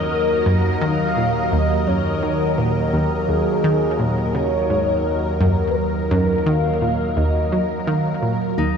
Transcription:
0, 0, Header, 1, 6, 480
1, 0, Start_track
1, 0, Key_signature, -6, "minor"
1, 0, Tempo, 705882
1, 74, Time_signature, 4, 2, 24, 8
1, 5966, End_track
2, 0, Start_track
2, 0, Title_t, "Soft synth lead"
2, 0, Program_c, 0, 80
2, 71, Note_on_c, 0, 70, 101
2, 552, Note_on_c, 0, 77, 113
2, 562, Note_off_c, 0, 70, 0
2, 985, Note_off_c, 0, 77, 0
2, 985, Note_on_c, 0, 77, 77
2, 1034, Note_on_c, 0, 75, 106
2, 1045, Note_off_c, 0, 77, 0
2, 1274, Note_on_c, 0, 73, 105
2, 1285, Note_off_c, 0, 75, 0
2, 1754, Note_on_c, 0, 70, 106
2, 1764, Note_off_c, 0, 73, 0
2, 2236, Note_on_c, 0, 68, 100
2, 2246, Note_off_c, 0, 70, 0
2, 2717, Note_on_c, 0, 70, 91
2, 2727, Note_off_c, 0, 68, 0
2, 2952, Note_off_c, 0, 70, 0
2, 2956, Note_on_c, 0, 73, 91
2, 3648, Note_off_c, 0, 73, 0
2, 3866, Note_on_c, 0, 71, 71
2, 3916, Note_on_c, 0, 70, 96
2, 3926, Note_off_c, 0, 71, 0
2, 4395, Note_on_c, 0, 77, 112
2, 4405, Note_off_c, 0, 70, 0
2, 4872, Note_on_c, 0, 75, 106
2, 4882, Note_off_c, 0, 77, 0
2, 5354, Note_on_c, 0, 77, 91
2, 5364, Note_off_c, 0, 75, 0
2, 5834, Note_off_c, 0, 77, 0
2, 5966, End_track
3, 0, Start_track
3, 0, Title_t, "Analog synth pad"
3, 0, Program_c, 1, 89
3, 0, Note_on_c, 1, 54, 76
3, 0, Note_on_c, 1, 70, 80
3, 0, Note_on_c, 1, 75, 80
3, 5966, Note_off_c, 1, 54, 0
3, 5966, Note_off_c, 1, 70, 0
3, 5966, Note_off_c, 1, 75, 0
3, 5966, End_track
4, 0, Start_track
4, 0, Title_t, "Harp"
4, 0, Program_c, 2, 46
4, 5834, Note_on_c, 2, 63, 78
4, 5966, Note_off_c, 2, 63, 0
4, 5966, End_track
5, 0, Start_track
5, 0, Title_t, "Synth arpeggio sound"
5, 0, Program_c, 3, 84
5, 314, Note_on_c, 3, 42, 100
5, 484, Note_off_c, 3, 42, 0
5, 554, Note_on_c, 3, 51, 99
5, 724, Note_off_c, 3, 51, 0
5, 795, Note_on_c, 3, 46, 76
5, 897, Note_off_c, 3, 46, 0
5, 1035, Note_on_c, 3, 39, 95
5, 1262, Note_off_c, 3, 39, 0
5, 1274, Note_on_c, 3, 42, 78
5, 1502, Note_off_c, 3, 42, 0
5, 1514, Note_on_c, 3, 51, 73
5, 1616, Note_off_c, 3, 51, 0
5, 1755, Note_on_c, 3, 46, 77
5, 1925, Note_off_c, 3, 46, 0
5, 1995, Note_on_c, 3, 39, 80
5, 2096, Note_off_c, 3, 39, 0
5, 2234, Note_on_c, 3, 39, 77
5, 2336, Note_off_c, 3, 39, 0
5, 2475, Note_on_c, 3, 51, 98
5, 2645, Note_off_c, 3, 51, 0
5, 2716, Note_on_c, 3, 46, 75
5, 2943, Note_off_c, 3, 46, 0
5, 2956, Note_on_c, 3, 49, 80
5, 3057, Note_off_c, 3, 49, 0
5, 3196, Note_on_c, 3, 44, 77
5, 3365, Note_off_c, 3, 44, 0
5, 3676, Note_on_c, 3, 42, 105
5, 3777, Note_off_c, 3, 42, 0
5, 4156, Note_on_c, 3, 42, 103
5, 4325, Note_off_c, 3, 42, 0
5, 4395, Note_on_c, 3, 51, 100
5, 4564, Note_off_c, 3, 51, 0
5, 4635, Note_on_c, 3, 46, 77
5, 4736, Note_off_c, 3, 46, 0
5, 4873, Note_on_c, 3, 39, 97
5, 5102, Note_off_c, 3, 39, 0
5, 5115, Note_on_c, 3, 54, 80
5, 5285, Note_off_c, 3, 54, 0
5, 5354, Note_on_c, 3, 51, 99
5, 5524, Note_off_c, 3, 51, 0
5, 5593, Note_on_c, 3, 46, 81
5, 5821, Note_off_c, 3, 46, 0
5, 5833, Note_on_c, 3, 39, 82
5, 5936, Note_off_c, 3, 39, 0
5, 5966, End_track
6, 0, Start_track
6, 0, Title_t, "Synth drone"
6, 0, Program_c, 4, 95
6, 0, Note_on_c, 4, 39, 85
6, 5810, Note_off_c, 4, 39, 0
6, 5834, Note_on_c, 4, 39, 86
6, 5966, Note_off_c, 4, 39, 0
6, 5966, End_track
0, 0, End_of_file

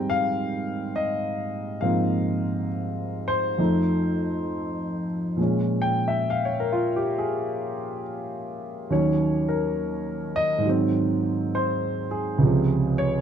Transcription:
0, 0, Header, 1, 2, 480
1, 0, Start_track
1, 0, Key_signature, -4, "major"
1, 0, Tempo, 884956
1, 993, Time_signature, 4, 2, 24, 8
1, 4362, Tempo, 872093
1, 7208, End_track
2, 0, Start_track
2, 0, Title_t, "Grand piano"
2, 0, Program_c, 0, 0
2, 0, Control_c, 0, 64, 127
2, 0, Note_on_c, 0, 44, 51
2, 0, Note_on_c, 0, 53, 49
2, 0, Note_on_c, 0, 55, 46
2, 0, Note_on_c, 0, 58, 50
2, 0, Note_on_c, 0, 60, 47
2, 0, Note_on_c, 0, 79, 83
2, 0, Note_on_c, 0, 82, 96
2, 52, Note_on_c, 0, 77, 94
2, 519, Note_on_c, 0, 75, 81
2, 537, Note_off_c, 0, 77, 0
2, 979, Note_off_c, 0, 44, 0
2, 980, Note_off_c, 0, 53, 0
2, 980, Note_off_c, 0, 58, 0
2, 981, Note_on_c, 0, 77, 75
2, 985, Note_off_c, 0, 60, 0
2, 987, Note_on_c, 0, 44, 46
2, 989, Note_off_c, 0, 55, 0
2, 989, Note_on_c, 0, 53, 49
2, 989, Note_on_c, 0, 58, 48
2, 993, Note_on_c, 0, 60, 51
2, 1008, Note_off_c, 0, 75, 0
2, 1441, Note_off_c, 0, 77, 0
2, 1777, Note_on_c, 0, 72, 92
2, 1935, Note_off_c, 0, 53, 0
2, 1943, Note_on_c, 0, 53, 46
2, 1944, Note_on_c, 0, 41, 53
2, 1946, Note_off_c, 0, 44, 0
2, 1947, Note_off_c, 0, 58, 0
2, 1949, Note_off_c, 0, 60, 0
2, 1950, Note_on_c, 0, 57, 48
2, 1951, Note_on_c, 0, 63, 55
2, 1955, Control_c, 0, 64, 0
2, 1958, Note_off_c, 0, 79, 0
2, 1959, Note_off_c, 0, 82, 0
2, 2058, Control_c, 0, 64, 127
2, 2734, Note_off_c, 0, 72, 0
2, 2908, Note_off_c, 0, 53, 0
2, 2910, Note_on_c, 0, 46, 51
2, 2916, Note_on_c, 0, 53, 47
2, 2918, Note_off_c, 0, 41, 0
2, 2921, Note_off_c, 0, 57, 0
2, 2921, Note_off_c, 0, 63, 0
2, 2927, Control_c, 0, 64, 0
2, 2929, Note_on_c, 0, 56, 49
2, 2936, Note_on_c, 0, 61, 54
2, 3019, Control_c, 0, 64, 127
2, 3154, Note_on_c, 0, 79, 82
2, 3274, Note_off_c, 0, 79, 0
2, 3296, Note_on_c, 0, 76, 74
2, 3385, Note_off_c, 0, 76, 0
2, 3418, Note_on_c, 0, 77, 80
2, 3499, Note_on_c, 0, 73, 68
2, 3514, Note_off_c, 0, 77, 0
2, 3554, Note_off_c, 0, 73, 0
2, 3580, Note_on_c, 0, 70, 65
2, 3648, Note_on_c, 0, 65, 79
2, 3729, Note_off_c, 0, 70, 0
2, 3761, Note_off_c, 0, 65, 0
2, 3777, Note_on_c, 0, 67, 60
2, 3866, Note_off_c, 0, 67, 0
2, 3896, Note_on_c, 0, 68, 68
2, 4345, Note_off_c, 0, 68, 0
2, 4834, Note_off_c, 0, 46, 0
2, 4834, Note_off_c, 0, 61, 0
2, 4835, Note_on_c, 0, 39, 52
2, 4836, Note_off_c, 0, 53, 0
2, 4838, Note_on_c, 0, 54, 49
2, 4839, Note_on_c, 0, 51, 47
2, 4842, Note_on_c, 0, 61, 63
2, 4843, Note_off_c, 0, 56, 0
2, 4844, Control_c, 0, 64, 0
2, 4847, Note_on_c, 0, 73, 66
2, 4943, Control_c, 0, 64, 127
2, 5155, Note_off_c, 0, 73, 0
2, 5156, Note_on_c, 0, 70, 67
2, 5616, Note_off_c, 0, 70, 0
2, 5637, Note_on_c, 0, 75, 97
2, 5760, Note_on_c, 0, 44, 55
2, 5771, Note_off_c, 0, 51, 0
2, 5780, Note_on_c, 0, 51, 45
2, 5791, Note_off_c, 0, 75, 0
2, 5793, Note_off_c, 0, 54, 0
2, 5796, Note_off_c, 0, 39, 0
2, 5799, Note_off_c, 0, 61, 0
2, 5801, Note_on_c, 0, 54, 49
2, 5805, Control_c, 0, 64, 0
2, 5821, Note_on_c, 0, 60, 60
2, 5909, Control_c, 0, 64, 127
2, 6292, Note_on_c, 0, 72, 83
2, 6600, Note_off_c, 0, 72, 0
2, 6601, Note_on_c, 0, 68, 70
2, 6740, Note_off_c, 0, 44, 0
2, 6750, Note_off_c, 0, 51, 0
2, 6750, Note_on_c, 0, 37, 54
2, 6756, Note_on_c, 0, 49, 51
2, 6761, Note_off_c, 0, 54, 0
2, 6766, Control_c, 0, 64, 0
2, 6767, Note_on_c, 0, 53, 51
2, 6771, Note_off_c, 0, 60, 0
2, 6775, Note_on_c, 0, 48, 64
2, 6876, Control_c, 0, 64, 127
2, 7058, Note_off_c, 0, 68, 0
2, 7081, Note_on_c, 0, 73, 87
2, 7175, Note_off_c, 0, 73, 0
2, 7208, Note_off_c, 0, 37, 0
2, 7208, Note_off_c, 0, 48, 0
2, 7208, Note_off_c, 0, 49, 0
2, 7208, Note_off_c, 0, 53, 0
2, 7208, End_track
0, 0, End_of_file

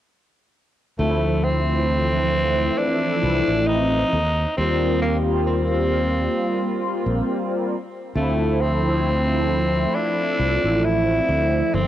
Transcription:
0, 0, Header, 1, 4, 480
1, 0, Start_track
1, 0, Key_signature, -1, "minor"
1, 0, Tempo, 895522
1, 532, Time_signature, 4, 2, 24, 8
1, 6364, End_track
2, 0, Start_track
2, 0, Title_t, "Tenor saxophone"
2, 0, Program_c, 0, 66
2, 530, Note_on_c, 0, 57, 83
2, 771, Note_on_c, 0, 60, 99
2, 779, Note_off_c, 0, 57, 0
2, 1489, Note_on_c, 0, 62, 109
2, 1497, Note_off_c, 0, 60, 0
2, 1969, Note_on_c, 0, 63, 103
2, 1977, Note_off_c, 0, 62, 0
2, 2445, Note_off_c, 0, 63, 0
2, 2449, Note_on_c, 0, 60, 93
2, 2674, Note_off_c, 0, 60, 0
2, 2691, Note_on_c, 0, 58, 82
2, 2776, Note_off_c, 0, 58, 0
2, 2933, Note_on_c, 0, 60, 86
2, 3871, Note_off_c, 0, 60, 0
2, 4375, Note_on_c, 0, 57, 84
2, 4615, Note_on_c, 0, 60, 97
2, 4623, Note_off_c, 0, 57, 0
2, 5332, Note_on_c, 0, 62, 114
2, 5340, Note_off_c, 0, 60, 0
2, 5813, Note_on_c, 0, 64, 104
2, 5821, Note_off_c, 0, 62, 0
2, 6294, Note_on_c, 0, 60, 101
2, 6302, Note_off_c, 0, 64, 0
2, 6364, Note_off_c, 0, 60, 0
2, 6364, End_track
3, 0, Start_track
3, 0, Title_t, "Analog polysynth"
3, 0, Program_c, 1, 90
3, 531, Note_on_c, 1, 53, 73
3, 533, Note_on_c, 1, 57, 66
3, 536, Note_on_c, 1, 60, 64
3, 538, Note_on_c, 1, 64, 79
3, 647, Control_c, 1, 64, 127
3, 871, Note_off_c, 1, 53, 0
3, 872, Note_off_c, 1, 57, 0
3, 873, Note_off_c, 1, 60, 0
3, 874, Note_off_c, 1, 64, 0
3, 896, Note_on_c, 1, 53, 73
3, 902, Note_on_c, 1, 57, 66
3, 907, Note_on_c, 1, 60, 65
3, 913, Note_on_c, 1, 52, 81
3, 2196, Note_off_c, 1, 53, 0
3, 2199, Note_off_c, 1, 57, 0
3, 2201, Note_off_c, 1, 60, 0
3, 2205, Note_off_c, 1, 52, 0
3, 2221, Control_c, 1, 64, 0
3, 2317, Control_c, 1, 64, 127
3, 2451, Note_on_c, 1, 55, 70
3, 2453, Note_on_c, 1, 58, 67
3, 2457, Note_on_c, 1, 60, 64
3, 2460, Note_on_c, 1, 65, 80
3, 2791, Note_off_c, 1, 55, 0
3, 2792, Note_off_c, 1, 58, 0
3, 2794, Note_off_c, 1, 60, 0
3, 2795, Note_off_c, 1, 65, 0
3, 2819, Note_on_c, 1, 55, 74
3, 2824, Note_on_c, 1, 58, 67
3, 2829, Note_on_c, 1, 60, 66
3, 2834, Note_on_c, 1, 65, 80
3, 4117, Note_off_c, 1, 55, 0
3, 4120, Note_off_c, 1, 58, 0
3, 4123, Note_off_c, 1, 60, 0
3, 4125, Note_off_c, 1, 65, 0
3, 4139, Control_c, 1, 64, 0
3, 4226, Control_c, 1, 64, 127
3, 4370, Note_on_c, 1, 53, 73
3, 4372, Note_on_c, 1, 57, 68
3, 4375, Note_on_c, 1, 60, 64
3, 4378, Note_on_c, 1, 64, 79
3, 4710, Note_off_c, 1, 53, 0
3, 4711, Note_off_c, 1, 57, 0
3, 4713, Note_off_c, 1, 60, 0
3, 4714, Note_off_c, 1, 64, 0
3, 4736, Note_on_c, 1, 53, 75
3, 4741, Note_on_c, 1, 57, 67
3, 4747, Note_on_c, 1, 60, 64
3, 4752, Note_on_c, 1, 64, 79
3, 6263, Note_off_c, 1, 53, 0
3, 6265, Note_off_c, 1, 57, 0
3, 6268, Note_off_c, 1, 60, 0
3, 6271, Note_off_c, 1, 64, 0
3, 6288, Note_on_c, 1, 53, 75
3, 6292, Note_on_c, 1, 57, 67
3, 6295, Note_on_c, 1, 58, 68
3, 6297, Note_on_c, 1, 60, 79
3, 6300, Control_c, 1, 64, 0
3, 6364, Note_off_c, 1, 53, 0
3, 6364, Note_off_c, 1, 57, 0
3, 6364, Note_off_c, 1, 58, 0
3, 6364, Note_off_c, 1, 60, 0
3, 6364, End_track
4, 0, Start_track
4, 0, Title_t, "Fingered electric bass"
4, 0, Program_c, 2, 33
4, 530, Note_on_c, 2, 38, 89
4, 1437, Note_off_c, 2, 38, 0
4, 1732, Note_on_c, 2, 36, 94
4, 1822, Note_off_c, 2, 36, 0
4, 1864, Note_on_c, 2, 33, 73
4, 2158, Note_off_c, 2, 33, 0
4, 2213, Note_on_c, 2, 39, 84
4, 2384, Note_off_c, 2, 39, 0
4, 2455, Note_on_c, 2, 39, 92
4, 3359, Note_off_c, 2, 39, 0
4, 3784, Note_on_c, 2, 34, 72
4, 3859, Note_off_c, 2, 34, 0
4, 4371, Note_on_c, 2, 38, 92
4, 5277, Note_off_c, 2, 38, 0
4, 5571, Note_on_c, 2, 36, 95
4, 5661, Note_off_c, 2, 36, 0
4, 5703, Note_on_c, 2, 33, 76
4, 5997, Note_off_c, 2, 33, 0
4, 6050, Note_on_c, 2, 38, 89
4, 6223, Note_off_c, 2, 38, 0
4, 6292, Note_on_c, 2, 31, 92
4, 6364, Note_off_c, 2, 31, 0
4, 6364, End_track
0, 0, End_of_file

